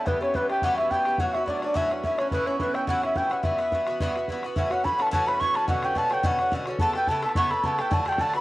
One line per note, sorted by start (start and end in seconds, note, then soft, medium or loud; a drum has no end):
0.00 0.27 D4 medium
0.00 0.80 E4 medium
0.00 0.49 G4 medium
0.00 2.72 A4 medium
0.06 0.21 G2 medium
0.06 0.22 E3 medium
0.06 0.35 B3 medium
0.06 0.21 B3 medium
0.06 0.19 G4 medium
0.06 0.22 B4 medium
0.06 0.24 B4 medium
0.06 bodhran loud
0.15 bodhran soft
0.21 0.34 E3 soft
0.21 0.35 B3 soft
0.21 1.56 C#4 medium
0.21 0.34 G4 medium
0.21 0.37 C#5 loud
0.21 0.37 C#5 medium
0.21 bodhran medium
0.34 0.49 G2 medium
0.34 0.50 E3 medium
0.34 2.33 B3 medium
0.34 0.50 B3 medium
0.34 0.48 G4 medium
0.34 0.52 B4 medium
0.34 0.49 B4 medium
0.34 bodhran loud
0.50 0.63 E3 soft
0.50 0.63 B3 soft
0.50 0.63 G4 soft
0.50 0.69 G4 medium
0.50 0.66 G5 medium
0.50 0.61 G5 medium
0.50 bodhran medium
0.62 0.78 G2 medium
0.62 0.78 E3 medium
0.62 0.78 B3 medium
0.62 0.97 F#4 medium
0.62 0.76 G4 medium
0.62 0.79 F#5 medium
0.62 0.77 F#5 loud
0.62 bodhran medium
0.77 0.91 E3 soft
0.77 0.92 B3 soft
0.77 1.36 E4 medium
0.77 0.91 G4 soft
0.77 0.91 E5 medium
0.77 0.92 E5 medium
0.77 bodhran medium
0.90 1.06 G2 medium
0.90 1.07 E3 medium
0.90 1.07 B3 medium
0.90 1.08 G4 medium
0.90 1.05 G4 medium
0.90 1.19 G5 medium
0.90 1.21 G5 medium
0.90 bodhran medium
1.05 1.20 B3 medium
1.05 1.19 G4 medium
1.05 1.29 G4 medium
1.05 bodhran medium
1.10 1.19 E3 soft
1.18 1.34 A2 medium
1.18 1.35 F#3 medium
1.18 1.35 C#4 medium
1.18 1.33 F#4 medium
1.18 1.46 F#5 medium
1.18 1.35 F#5 medium
1.18 bodhran medium
1.23 2.81 F#4 medium
1.23 bodhran soft
1.34 1.48 C#4 soft
1.34 1.77 E4 medium
1.34 1.47 F#4 medium
1.34 1.47 E5 medium
1.34 bodhran medium
1.38 1.46 F#3 soft
1.46 1.62 A2 medium
1.46 1.63 F#3 medium
1.46 1.63 C#4 medium
1.46 1.64 D4 medium
1.46 1.61 F#4 medium
1.46 1.61 D5 medium
1.46 1.61 D5 loud
1.46 bodhran medium
1.62 1.74 F#3 soft
1.62 1.74 C#4 soft
1.62 2.27 D4 medium
1.62 1.75 F#4 medium
1.62 1.76 D5 medium
1.62 1.78 D5 medium
1.62 bodhran medium
1.74 1.90 A2 medium
1.74 1.90 F#3 medium
1.74 1.90 C#4 loud
1.74 2.06 E4 medium
1.74 1.89 F#4 loud
1.74 1.90 E5 medium
1.74 1.91 E5 loud
1.74 bodhran medium
1.90 2.03 F#3 soft
1.90 2.04 C#4 soft
1.90 2.03 F#4 medium
1.90 bodhran medium
2.03 2.19 A2 medium
2.03 2.19 F#3 medium
2.03 2.19 C#4 medium
2.03 3.02 E4 medium
2.03 2.18 F#4 medium
2.03 2.18 E5 medium
2.03 2.20 E5 medium
2.03 bodhran medium
2.18 2.33 F#3 soft
2.18 2.33 C#4 medium
2.18 2.46 C#4 medium
2.18 2.32 F#4 medium
2.18 2.31 C#5 medium
2.18 bodhran medium
2.31 2.47 A2 medium
2.31 2.48 E3 medium
2.31 2.61 B3 medium
2.31 2.47 C#4 medium
2.31 2.46 E4 medium
2.31 2.48 B4 medium
2.31 2.38 C#5 medium
2.31 bodhran medium
2.37 2.58 B4 medium
2.37 bodhran soft
2.46 2.59 E3 soft
2.46 6.33 C#4 medium
2.46 2.61 C#4 soft
2.46 2.60 E4 medium
2.46 2.60 C#5 medium
2.46 bodhran medium
2.60 2.75 A2 medium
2.60 2.75 E3 medium
2.60 6.76 B3 medium
2.60 2.75 C#4 medium
2.60 2.73 E4 medium
2.60 2.78 B4 medium
2.60 2.76 B4 medium
2.60 bodhran medium
2.74 2.88 E3 soft
2.74 2.88 C#4 medium
2.74 2.88 E4 soft
2.74 2.95 G4 medium
2.74 2.88 G5 medium
2.74 bodhran medium
2.87 3.03 A2 medium
2.87 3.04 E3 medium
2.87 3.02 C#4 loud
2.87 3.00 E4 loud
2.87 3.23 F#4 medium
2.87 3.02 F#5 medium
2.87 3.17 F#5 medium
2.87 bodhran medium
3.02 3.16 E3 soft
3.02 3.16 C#4 medium
3.02 3.15 E4 medium
3.02 3.44 E4 medium
3.02 3.18 E5 medium
3.02 bodhran medium
3.15 3.31 A2 medium
3.15 3.32 E3 medium
3.15 3.31 C#4 medium
3.15 3.29 E4 medium
3.15 3.36 G4 medium
3.15 3.35 G5 medium
3.15 3.33 G5 medium
3.15 bodhran medium
3.30 3.42 E3 medium
3.30 3.44 C#4 soft
3.30 3.44 E4 medium
3.30 4.69 F#4 medium
3.30 3.45 F#5 medium
3.30 3.47 F#5 medium
3.30 bodhran medium
3.43 3.59 G2 medium
3.43 3.59 E3 medium
3.43 3.59 B3 medium
3.43 4.56 E4 medium
3.43 3.57 F#4 medium
3.43 4.28 E5 medium
3.43 4.29 E5 medium
3.43 bodhran medium
3.51 bodhran soft
3.58 3.72 E3 soft
3.58 3.73 B3 medium
3.58 3.72 F#4 medium
3.58 bodhran medium
3.72 3.87 G2 medium
3.72 3.88 E3 medium
3.72 3.88 B3 medium
3.72 3.86 F#4 medium
3.72 bodhran medium
3.87 4.01 B3 medium
3.87 4.00 F#4 medium
3.87 bodhran medium
3.91 4.00 E3 medium
4.00 4.16 G2 medium
4.00 4.16 E3 medium
4.00 4.16 B3 loud
4.00 4.14 F#4 loud
4.00 bodhran medium
4.15 4.29 E3 medium
4.15 4.29 B3 soft
4.15 4.28 F#4 medium
4.15 bodhran medium
4.28 4.44 G2 medium
4.28 4.44 E3 medium
4.28 4.45 B3 medium
4.28 4.43 F#4 medium
4.28 bodhran medium
4.43 4.57 B3 medium
4.43 4.57 F#4 medium
4.43 bodhran medium
4.47 4.56 E3 soft
4.56 4.71 A2 medium
4.56 4.72 E3 medium
4.56 4.71 C#4 medium
4.56 8.05 E4 medium
4.56 4.69 F#4 medium
4.56 4.73 E5 medium
4.56 4.74 E5 medium
4.56 bodhran medium
4.70 4.84 E3 medium
4.70 4.85 C#4 medium
4.70 5.69 F#4 medium
4.70 4.84 F#4 medium
4.70 4.87 F#5 medium
4.70 4.86 F#5 loud
4.70 bodhran medium
4.84 5.00 A2 medium
4.84 5.00 E3 medium
4.84 4.99 C#4 medium
4.84 5.28 B4 loud
4.84 5.04 B5 loud
4.84 4.99 B5 medium
4.84 bodhran medium
4.88 4.97 F#4 medium
4.98 5.12 E3 soft
4.98 5.13 C#4 medium
4.98 5.12 F#4 medium
4.98 5.13 A4 medium
4.98 5.12 A5 medium
4.98 bodhran medium
5.07 bodhran medium
5.11 5.27 A2 loud
5.11 5.28 E3 medium
5.11 5.27 C#4 loud
5.11 5.25 F#4 medium
5.11 5.57 A4 medium
5.11 5.29 A5 loud
5.11 5.29 A5 medium
5.11 bodhran medium
5.26 5.41 E3 soft
5.26 5.41 C#4 soft
5.26 5.40 F#4 medium
5.26 8.02 B4 loud
5.26 5.41 B5 medium
5.26 5.42 B5 loud
5.26 bodhran medium
5.40 5.56 A2 medium
5.40 5.56 E3 medium
5.40 5.56 C#4 medium
5.40 7.37 C#5 loud
5.40 5.56 C#6 loud
5.40 5.58 C#6 loud
5.40 bodhran medium
5.44 5.54 F#4 medium
5.54 5.68 C#4 medium
5.54 5.68 F#4 medium
5.54 5.97 A4 medium
5.54 5.70 A5 medium
5.54 5.68 A5 medium
5.54 bodhran medium
5.59 5.68 E3 soft
5.68 5.83 B2 medium
5.68 5.84 D3 medium
5.68 5.83 C#4 medium
5.68 5.90 F#4 medium
5.68 5.82 F#4 medium
5.68 5.87 F#5 medium
5.68 5.86 F#5 medium
5.68 bodhran medium
5.83 5.95 D3 soft
5.83 5.97 C#4 medium
5.83 5.96 F#4 medium
5.83 6.11 G4 medium
5.83 5.99 G5 medium
5.83 5.99 G5 loud
5.83 bodhran medium
5.95 6.11 B2 medium
5.95 6.11 D3 medium
5.95 6.11 C#4 medium
5.95 6.08 F#4 medium
5.95 6.79 A4 medium
5.95 6.13 A5 loud
5.95 6.15 A5 loud
5.95 bodhran medium
6.10 6.23 C#4 medium
6.10 6.23 F#4 medium
6.10 6.31 G4 medium
6.10 6.27 G5 medium
6.10 6.28 G5 loud
6.10 bodhran medium
6.14 6.23 D3 medium
6.23 6.39 B2 medium
6.23 6.39 D3 medium
6.23 6.39 C#4 loud
6.23 7.01 F#4 medium
6.23 6.38 F#4 loud
6.23 6.53 F#5 medium
6.23 6.54 F#5 loud
6.23 bodhran medium
6.39 6.52 D3 medium
6.39 6.53 C#4 soft
6.39 6.52 F#4 medium
6.39 bodhran medium
6.52 6.67 B2 medium
6.52 6.68 D3 medium
6.52 6.67 C#4 medium
6.52 6.66 F#4 medium
6.52 bodhran medium
6.66 6.81 C#4 medium
6.66 6.80 F#4 medium
6.66 bodhran medium
6.70 6.80 D3 medium
6.79 6.95 C#3 medium
6.79 6.95 B3 medium
6.79 6.96 E4 medium
6.79 7.10 A4 medium
6.79 6.94 A4 medium
6.79 6.94 A5 loud
6.79 6.98 A5 medium
6.79 bodhran medium
6.93 7.09 E4 medium
6.93 7.78 G4 medium
6.93 7.08 A4 medium
6.93 7.10 G5 medium
6.93 7.11 G5 medium
6.93 bodhran medium
6.99 7.09 B3 medium
7.07 7.23 C#3 medium
7.07 7.24 B3 medium
7.07 7.25 A4 medium
7.07 7.23 A5 loud
7.07 7.23 A5 medium
7.07 bodhran loud
7.11 7.23 E4 medium
7.11 7.21 A4 medium
7.22 7.36 B3 soft
7.22 7.36 E4 medium
7.22 7.36 A4 medium
7.22 7.64 A4 medium
7.22 7.35 A5 medium
7.22 bodhran medium
7.29 bodhran medium
7.35 7.51 C#3 medium
7.35 7.51 B3 loud
7.35 7.52 E4 medium
7.35 7.49 A4 loud
7.35 8.41 C#5 loud
7.35 7.52 C#6 loud
7.35 7.53 C#6 medium
7.35 bodhran medium
7.50 7.64 B3 medium
7.50 7.64 E4 soft
7.50 7.64 A4 medium
7.50 7.67 B5 loud
7.50 7.65 B5 medium
7.50 bodhran medium
7.64 7.79 C#3 medium
7.64 7.79 B3 medium
7.64 7.79 E4 medium
7.64 7.90 A4 medium
7.64 7.77 A4 medium
7.64 7.81 A5 medium
7.64 7.82 A5 medium
7.64 bodhran medium
7.78 7.91 B3 soft
7.78 7.92 E4 medium
7.78 8.41 G4 medium
7.78 7.91 A4 medium
7.78 7.92 G5 medium
7.78 7.95 G5 medium
7.78 bodhran medium
7.90 8.06 A2 medium
7.90 8.06 D3 medium
7.90 8.06 A3 medium
7.90 8.04 F#4 medium
7.90 8.18 A4 medium
7.90 8.18 A5 medium
7.90 8.10 A5 loud
7.90 bodhran loud
8.05 8.19 D3 medium
8.05 8.20 A3 medium
8.05 8.19 F#4 medium
8.05 8.23 G5 loud
8.05 bodhran medium
8.12 bodhran medium
8.18 8.34 A2 medium
8.18 8.35 D3 medium
8.18 8.35 A3 medium
8.18 8.33 F#4 medium
8.18 8.41 A4 medium
8.18 8.36 A5 loud
8.18 8.35 A5 loud
8.18 bodhran medium
8.34 8.41 A3 medium
8.34 8.41 F#4 medium
8.34 8.41 B4 loud
8.34 8.41 B5 medium
8.34 8.41 B5 loud
8.34 bodhran medium